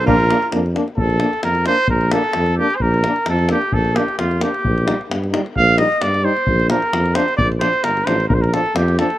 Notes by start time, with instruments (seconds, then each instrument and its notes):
0.05 tuba A#1, euphonium A#3, french horn D4, alto saxophone F4, trumpet A#4, davul low
0.20 davul high
0.28 euphonium A#3, french horn D4, davul high
0.43 davul high
0.51 tuba F2, euphonium A#3, french horn D4, davul high
0.66 davul high
0.74 euphonium A#3, french horn D4, davul high
0.88 davul high
0.98 tuba A#1, trumpet A4, davul low
1.10 davul high
1.20 euphonium A#3, french horn D4, davul high
1.33 davul high
1.43 tuba F2, trumpet A#4, davul high
1.55 davul high
1.66 euphonium A#3, french horn D4, trumpet C5, davul high
1.78 davul high
1.88 tuba A#1, trumpet A#4, davul low
2.01 davul high
2.11 euphonium A#3, french horn D4, trumpet A4, davul high
2.24 davul high
2.33 tuba F2, davul high
2.46 davul high
2.58 euphonium A#3, french horn D4, trumpet G4
2.70 davul high
2.76 trumpet C5
2.80 tuba A#1, trumpet A#4, davul low
2.94 davul high
3.03 euphonium A#3, french horn D4, davul high
3.16 davul high
3.26 tuba F2, trumpet A4, davul high
3.39 davul high
3.49 euphonium A#3, french horn D4, trumpet G4, davul high
3.62 davul high
3.72 tuba A#1, trumpet A4, davul low
3.85 davul high
3.95 euphonium A#3, french horn D4, trumpet G4, davul high
4.08 davul high
4.19 tuba F2, trumpet F4, davul high
4.31 davul high
4.41 euphonium A#3, french horn D4, trumpet G4, davul high
4.54 davul high
4.65 tuba A#1, davul low
4.78 davul high
4.86 euphonium G3, french horn D#4, davul high
5.01 davul high
5.10 tuba G2, davul high
5.24 davul high
5.31 euphonium G3, french horn D#4, davul high
5.46 davul high
5.56 tuba A#1, trumpet F5, davul low
5.69 davul high
5.77 euphonium G3, french horn D#4, trumpet D#5, davul high
5.92 davul high
6.02 tuba G2, trumpet D5, davul high
6.14 davul high
6.23 euphonium G3, french horn D#4, trumpet C5
6.37 davul high
6.47 tuba A#1, davul low
6.60 davul high
6.69 euphonium F3, french horn D4, trumpet A#4, davul high
6.82 davul high
6.93 tuba F2, davul high
7.06 davul high
7.14 euphonium F3, french horn D4, trumpet C5, davul high
7.28 davul high
7.37 tuba A#1, trumpet D5, davul low
7.52 davul high
7.60 euphonium F3, french horn D4, trumpet C5, davul high
7.73 davul high
7.84 tuba G1, trumpet A#4, davul high
7.97 davul high
8.05 tuba A1, euphonium F3, french horn D4, trumpet C5, davul high
8.20 davul high
8.29 tuba A#1, trumpet A#4, davul low
8.34 trumpet C5
8.41 trumpet A#4, davul high
8.46 trumpet A#4
8.51 euphonium F3, french horn D4, trumpet A4, davul high
8.66 davul high
8.75 tuba F2, trumpet G4, davul high
8.88 davul high
8.98 euphonium F3, french horn D4, trumpet A4, davul high
9.10 davul high